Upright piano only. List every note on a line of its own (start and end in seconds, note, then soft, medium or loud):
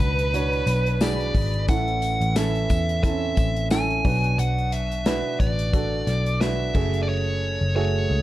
0.00 1.70 B2 medium
0.00 1.70 F#3 medium
0.00 0.34 D4 medium
0.00 0.34 F#4 medium
0.00 1.71 B4 medium
0.34 0.96 D4 medium
0.34 0.97 F#4 medium
0.34 0.97 C#5 medium
1.01 1.64 D4 medium
1.01 1.64 F#4 medium
1.01 1.64 G#4 medium
1.68 2.66 A2 medium
1.68 2.66 E3 medium
1.68 2.31 C#4 medium
1.68 2.31 E4 medium
1.68 2.32 A4 medium
2.36 2.99 C#4 medium
2.36 2.99 E4 medium
2.36 2.99 A4 medium
3.03 3.11 C4 medium
3.03 3.66 E4 medium
3.03 3.66 A4 medium
3.10 3.69 C#4 medium
3.71 4.05 C#4 medium
3.71 4.05 E4 medium
3.71 4.05 A4 medium
4.05 5.02 B2 medium
4.05 5.02 F#3 medium
4.05 4.99 D4 medium
4.05 4.99 F#4 medium
4.05 4.99 B4 medium
5.06 5.69 D4 medium
5.06 5.69 F#4 medium
5.06 5.69 B4 medium
5.73 6.36 D4 medium
5.73 6.36 F#4 medium
5.73 6.36 A4 medium
6.41 6.75 D4 medium
6.41 6.74 F#4 medium
6.41 6.75 B4 medium
6.75 7.72 C#3 medium
6.75 7.69 A3 medium
6.75 7.69 F#4 medium
6.75 7.69 G#4 medium
7.76 8.22 A3 medium
7.76 8.22 F#4 medium
7.76 8.22 G#4 medium